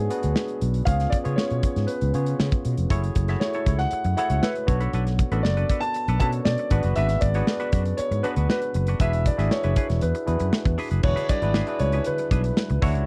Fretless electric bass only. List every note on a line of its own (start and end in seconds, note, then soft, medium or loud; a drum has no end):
0.24 0.33 D2 medium
0.62 0.80 B1 medium
0.87 1.06 C#2 medium
1.26 1.35 C#3 medium
1.51 1.60 B2 medium
1.76 1.86 G#2 medium
2.02 2.11 C#2 medium
2.15 2.33 C#3 medium
2.40 2.49 C#3 medium
2.65 2.74 B2 medium
2.78 2.87 F1 medium
2.90 3.09 F#1 medium
3.16 3.35 F#1 medium
3.67 3.85 C#2 medium
3.93 muted fretless electric bass stroke soft
4.05 4.14 F#2 medium
4.30 4.39 C#2 medium
4.68 4.87 B1 medium
4.94 5.22 B1 medium
5.32 5.41 A1 medium
5.45 5.63 F#1 medium
6.08 6.17 B1 medium
6.20 6.39 B2 medium
6.46 6.56 B2 medium
6.71 6.81 G#1 medium
6.84 6.94 F#1 medium
6.97 7.16 G#1 loud
7.22 7.41 G#1 medium
7.73 7.92 F#2 medium
7.99 muted fretless electric bass stroke soft
8.11 8.21 G#2 medium
8.37 8.46 D2 medium
8.75 8.94 F#1 medium
9.00 9.28 E1 medium
9.39 9.48 G#1 medium
9.65 9.74 F#1 medium
9.90 9.99 E1 medium
10.03 10.12 E2 loud
10.28 10.37 E2 medium
10.41 10.50 F#2 medium
10.66 10.75 E2 medium
10.91 11.01 F#1 medium
11.04 11.13 E1 medium
11.42 11.61 G#1 medium
11.80 11.99 C#2 medium
12.31 12.50 B1 medium
12.70 12.79 C#2 medium
12.83 12.95 D2 medium
12.95 13.05 C#2 medium